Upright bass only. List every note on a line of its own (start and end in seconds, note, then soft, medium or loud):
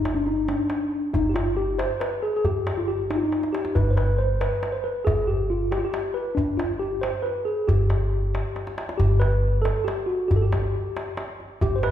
0.00 0.52 G1 medium
1.15 1.83 G1 medium
2.45 3.14 G1 medium
3.76 4.45 G1 medium
5.07 5.76 G1 medium
6.38 7.06 G1 medium
7.69 8.37 G1 medium
9.00 9.68 G1 medium
10.31 10.48 G1 medium
10.53 10.70 G1 medium
11.62 11.91 G1 loud